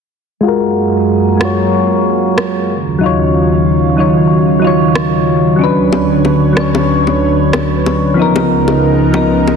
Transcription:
0.41 analog synth pad F#2 A#3 G#4, synth keys G#3 F4
0.45 synth keys F#4 A#4
1.37 synth keys G#3 F4, cross-stick
1.42 synth keys F#4 C#5
2.38 cross-stick
2.70 analog synth pad D#2 C#3 F#3 F4
2.99 synth keys F#3 D#4
3.03 synth keys F4 C#5
3.97 synth keys F#3 D#4 F4 C#5
4.59 synth keys F#3 D#4
4.64 synth keys F4 C#5
4.95 cross-stick
5.56 synth keys F#3 C#4
5.60 analog synth pad D2 D3 B4 C#5, synth keys D4 B4
5.92 high bongo
6.25 high bongo
6.53 synth keys F#3 C#4, cross-stick
6.58 synth keys D4 C#5
6.75 high bongo
7.07 high bongo
7.53 cross-stick, high bongo
7.86 high bongo
8.14 analog synth pad C#2 B3 D#4, synth keys F3 B3
8.18 analog synth pad C#3 F3 A#4, synth keys D#4 A#4
8.36 high bongo
8.68 high bongo
9.13 synth keys F3 B3 D#4 A#4, high bongo
9.48 high bongo

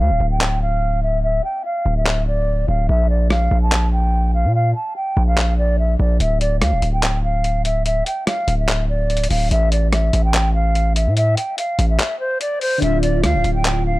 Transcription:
0.00 808-style bass D2, flute F5
0.10 808-style bass D1
0.20 808-style bass D1
0.31 flute G5
0.41 clap
0.62 flute F5
1.03 flute E5
1.23 flute E5
1.44 flute G5
1.65 flute F5
1.86 808-style bass D1
1.97 flute E5
2.06 clap
2.27 flute D5
2.68 808-style bass D1, flute F5
2.89 808-style bass A#1, flute E5
3.10 flute D5
3.30 flute F5, cross-stick
3.51 808-style bass A#1
3.62 flute A5
3.72 clap
3.93 flute G5
4.34 flute F5
4.45 808-style bass A#2
4.55 flute F5
4.75 flute A5
4.96 flute G5
5.17 808-style bass A#1
5.28 flute F5
5.37 clap
5.58 flute D5
5.79 flute E5
5.99 808-style bass A#1, flute D5
6.20 808-style bass D1, flute E5, closed hi-hat
6.41 flute D5, closed hi-hat
6.61 808-style bass D2, flute F5, cross-stick, closed hi-hat
6.72 808-style bass D1
6.82 808-style bass D1, closed hi-hat
6.93 flute G5
7.03 clap, closed hi-hat
7.24 flute F5
7.44 closed hi-hat
7.65 flute E5, closed hi-hat
7.86 flute E5, closed hi-hat
8.06 flute G5, closed hi-hat
8.27 flute F5, cross-stick, closed hi-hat
8.48 808-style bass D1, closed hi-hat
8.59 flute E5
8.68 clap, closed hi-hat
8.89 flute D5
9.10 closed hi-hat
9.17 closed hi-hat
9.24 closed hi-hat
9.30 808-style bass D1, flute F5, open hi-hat
9.51 808-style bass A1, flute E5, closed hi-hat
9.72 flute D5, closed hi-hat
9.92 flute E5, cross-stick, closed hi-hat
10.13 808-style bass A1, closed hi-hat
10.24 flute G5
10.34 clap, closed hi-hat
10.54 flute F5
10.75 closed hi-hat
10.96 flute E5, closed hi-hat
11.07 808-style bass A2
11.17 flute E5, closed hi-hat
11.37 flute G5, closed hi-hat
11.58 flute F5, closed hi-hat
11.79 808-style bass A1, closed hi-hat
11.90 flute E5
11.99 clap, closed hi-hat
12.20 flute C5
12.41 flute D5, closed hi-hat
12.61 flute C5, open hi-hat
12.78 synth keys D3 D4
12.82 808-style bass D1, synth keys F4, flute E5, closed hi-hat
13.03 flute D5, closed hi-hat
13.24 808-style bass D2, flute F5, cross-stick, closed hi-hat
13.35 808-style bass D1
13.44 808-style bass D1, closed hi-hat
13.55 flute G5
13.65 clap, closed hi-hat
13.86 flute F5

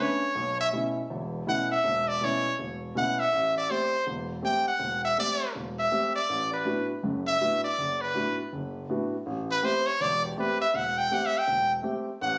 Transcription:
Already playing: grand piano A3 B3 D4
0.00 grand piano C#4, trumpet C#5
0.35 grand piano B1
0.61 trumpet E5
0.72 grand piano B2 A3 C#4 E4
1.10 grand piano E1 E2
1.47 grand piano B2 A3 C#4 E4, trumpet F#5
1.71 trumpet E5
1.84 grand piano E1
2.08 trumpet D5
2.21 grand piano B2 A3 C#4 E4, trumpet C#5
2.59 grand piano E1
2.95 grand piano B2 A3 C#4 E4, trumpet F#5
3.20 trumpet E5
3.33 grand piano A1
3.57 trumpet D5
3.69 grand piano A3 C4 G4, trumpet C5
4.07 grand piano E1 E2
4.42 grand piano A3 C4 G4, trumpet G5
4.68 trumpet F#5
4.79 grand piano E1
5.05 trumpet E5
5.18 grand piano A3 C4 G4, trumpet D5
5.55 grand piano E1
5.79 trumpet E5
5.91 grand piano A3 C4 G4
6.15 trumpet D5
6.29 grand piano A1
6.53 trumpet B4
6.65 grand piano A2 B3 D4 F#4
7.03 grand piano F#1 F#2
7.27 trumpet E5
7.41 grand piano A2 B3 D4 F#4
7.64 trumpet D5
7.78 grand piano F#1
8.01 trumpet B4
8.15 grand piano A2 B3 D4 F#4
8.53 grand piano F#1
8.89 grand piano A2 B3 D4 F#4
9.26 grand piano A1
9.51 trumpet B4
9.63 grand piano A3 C4 G4, trumpet C5
9.86 trumpet C#5
10.00 grand piano E1 E2, trumpet D5
10.25 trumpet G4
10.37 grand piano A3 C4 G4, trumpet B4
10.62 trumpet E5
10.74 grand piano E1, trumpet F#5
10.98 trumpet G5
11.11 grand piano A3 C4 G4, trumpet F#5
11.26 trumpet E5
11.38 trumpet G5
11.47 grand piano E1
11.83 grand piano A3 C4 G4
12.21 grand piano A1, trumpet F#5

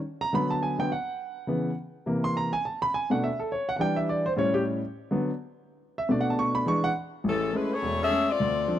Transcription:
0.21 grand piano A#5
0.33 grand piano D3 F#3 B3 B5
0.51 grand piano A5
0.63 grand piano G#5
0.79 grand piano D3 F#3 B3 G5
0.92 grand piano F#5
1.47 grand piano C#3 E3 B3
2.06 grand piano C3 E3 A#3
2.24 grand piano C6
2.37 grand piano A#5
2.53 grand piano G#5
2.65 grand piano A5
2.82 grand piano B5
2.94 grand piano G#5
3.10 grand piano B2 A3 D4 F#5
3.24 grand piano E5
3.39 grand piano A4
3.52 grand piano C#5
3.69 grand piano F#5
3.76 grand piano E3 G3 D4 F#5
3.81 grand piano G5
3.96 grand piano E5
4.09 grand piano D5
4.26 grand piano C5
4.34 grand piano A2 G3 C#4 C5
4.39 grand piano C#5
4.54 grand piano G4
5.11 grand piano D3 F#3 B3
5.98 grand piano E5
6.09 grand piano B2 A3 D4 D5
6.21 grand piano F#5
6.30 grand piano A5
6.39 grand piano C#6
6.55 grand piano B5
6.66 grand piano E3 G#3 D4 C#6
6.84 grand piano F#5
7.24 grand piano A1, saxophone section E3 G#3 C#4 A4
7.52 grand piano G#3 A3 C#4, saxophone section G#3 C#4 E4 B4
7.72 saxophone section A3 E4 G#4 C#5
7.82 grand piano E1
8.02 saxophone section C#4 G#4 A4 E5
8.10 grand piano G#3 A3 C#4
8.29 saxophone section C4 F4 A4 D5
8.40 grand piano D2
8.68 grand piano F3 C4 D4

